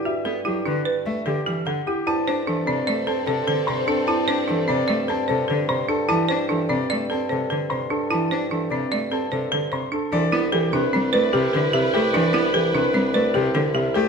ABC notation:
X:1
M:5/4
L:1/8
Q:1/4=149
K:Ador
V:1 name="Grand piano"
e z G B z e G z f G | a z A d z a A z c' A | a z A d z a A z c' A | a z A d z a A z c' A |
a z A d z a A z c' A | [K:C] d z G B z d G z e G | d z G B z d G z e G |]
V:2 name="Clarinet"
z8 z2 | c8- c2- | c8- c z | z8 z2 |
z8 z2 | [K:C] B8- B2- | B8- B z |]
V:3 name="Marimba"
F A E D B z A G A E | E c D C d A c A c D | E c D C d A c A c D | E c D C d A c A c D |
E c D C d A c A c D | [K:C] D E A D C B G A G A | D E A D C B G A G A |]
V:4 name="Violin section"
z8 z2 | [CA]8- [CA]2- | [CA]8- [CA] z | z8 z2 |
z8 z2 | [K:C] [EB]8- [EB]2- | [EB]8- [EB] z |]
V:5 name="Cello" clef=bass
z B, F, D, z A, D, E, D, z | z D E, C, A, C C, D, C, z | z D E, C, A, C C, D, C, z | E, D E, C, A, C C, D, C, z |
E, D E, C, A, C C, D, C, z | [K:C] E, B, E, C, G, A, C, D, C, A, | E, B, E, C, G, A, C, D, C, A, |]
V:6 name="Bassoon" clef=bass
G,,8- G,,2 | G,,8- G,,2- | G,,8- G,,2- | G,,8- G,,2- |
G,,8- G,,2 | [K:C] C,,8- C,,2- | C,,8- C,,2 |]